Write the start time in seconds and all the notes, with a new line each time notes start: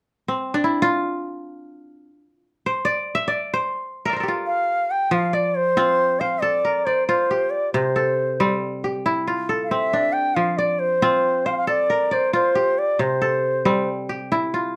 0.28 C4
0.54 D4
0.64 E4
0.82 F4
2.66 C5
2.85 D5
3.15 E5
3.28 D5
3.54 C5
4.05 A#4 D5 E5
4.13 A#4 C5
4.20 G4 A4
4.28 F4
4.46 F5
4.91 G5
5.11 F3 F5
5.33 D5
5.55 C5
5.77 C4 F4
6.20 C5 F5
6.42 A4 D5
6.65 A#4
6.86 C5 D5
7.07 F4 C5
7.31 G4
7.50 D5
7.73 C3 C5
7.96 A4
8.40 G3 C4
8.84 G4
9.06 E4
9.28 F4
9.49 A4
9.64 F5
9.69 C4 E5
9.93 D4
10.13 G5
10.35 F3 F5
10.58 D5
10.79 C5
11.02 C4 F4
11.46 C5 F5
11.52 F5
11.57 F5
11.67 A4 D5
11.90 A#4
12.11 C5 D5
12.33 F4 C5
12.55 G4
12.78 D5
12.99 C3 C5
13.22 A4
13.65 G3 C4
14.09 G4
14.32 E4
14.54 F4